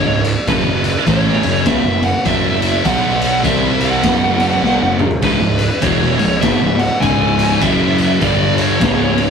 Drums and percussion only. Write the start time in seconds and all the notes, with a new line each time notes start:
0.24 ride
0.47 kick, ride
0.84 ride
1.07 kick, ride
1.26 snare
1.43 ride
1.66 kick, snare, ride
2.03 ride
2.25 kick, ride
2.62 ride
2.85 kick, ride
3.22 ride
3.44 kick, ride
3.81 ride
4.03 kick, snare, ride
4.40 ride
4.64 snare
4.99 mid tom
5.11 floor tom
5.22 kick, ride
5.59 ride
5.82 kick, ride
6.02 snare
6.19 ride
6.42 kick, snare, ride
6.79 ride
7.02 kick, ride
7.39 ride
7.61 kick, ride
7.98 ride
8.21 kick, ride
8.58 ride
8.81 kick, snare, ride
9.18 ride